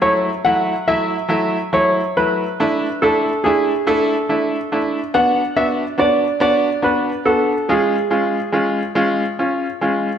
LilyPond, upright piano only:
\new Staff \with { instrumentName = "Upright piano" } { \time 6/8 \key fis \minor \tempo 4. = 47 <fis a e'>8 <fis a e'>8 <fis a e'>8 <fis a e'>8 <fis a e'>8 <fis a e'>8 | <a d' e'>8 <a d' e'>8 <a d' e'>8 <a d' e'>8 <a d' e'>8 <a d' e'>8 | <b d' fis'>8 <b d' fis'>8 <b d' fis'>8 <b d' fis'>8 <b d' fis'>8 <b d' fis'>8 | <gis cis' eis'>8 <gis cis' eis'>8 <gis cis' eis'>8 <gis cis' eis'>8 <cis' eis'>8 <gis cis' eis'>8 | }